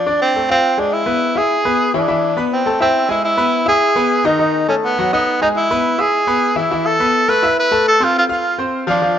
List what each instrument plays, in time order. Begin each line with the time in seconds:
Already playing: tenor saxophone D4
0.06 grand piano D4 D5
0.22 tenor saxophone C4
0.36 grand piano A3 A4
0.49 tenor saxophone C4, grand piano F4 F5
0.77 grand piano G#3 G#4, tenor saxophone D4
0.93 tenor saxophone E4
1.06 grand piano B3 B4
1.35 grand piano E4 E5, tenor saxophone G#4
1.65 grand piano B3 B4
1.94 grand piano E3 E4, tenor saxophone D4
2.08 grand piano E3 E4 E5
2.37 grand piano B3 B4 B5
2.52 tenor saxophone C4
2.66 grand piano A3 A4 A5
2.80 tenor saxophone C4, grand piano E4 E5 E6
3.09 grand piano G#3 G#4 G#5, tenor saxophone E4
3.24 tenor saxophone E4
3.37 grand piano B3 B4 B5
3.66 grand piano E4 E5 E6, tenor saxophone G#4
3.96 grand piano B3 B4 B5
4.24 grand piano D#3 D#4 D#5, tenor saxophone D#4
4.39 grand piano D#3 D#4 D#5
4.68 grand piano A3 A4 A5, tenor saxophone C#4
4.85 tenor saxophone B3
4.99 grand piano F#3 F#4 F#5
5.13 tenor saxophone B3, grand piano D#4 D#5 D#6
5.41 grand piano G#3 G#4 G#5, tenor saxophone D#4
5.56 tenor saxophone E4
5.71 grand piano B3 B4 B5
5.98 grand piano E4 E5 E6, tenor saxophone G#4
6.27 grand piano B3 B4 B5
6.56 grand piano E3 E4 E5, tenor saxophone E4
6.71 grand piano E3 E4 E5
6.86 tenor saxophone A4
7.00 grand piano B3 B4 B5
7.28 grand piano A3 A4 A5, tenor saxophone B4
7.43 grand piano E4 E5 E6
7.60 tenor saxophone B4
7.71 grand piano A3 A4 A5
7.88 tenor saxophone A4
8.00 grand piano C4 C5 C6, tenor saxophone F4
8.18 tenor saxophone F4
8.29 grand piano F4 F5 F6, tenor saxophone F4
8.58 grand piano C4 C5 C6
8.87 grand piano F3 F4 F5, tenor saxophone D4
9.02 grand piano F3 F4 F5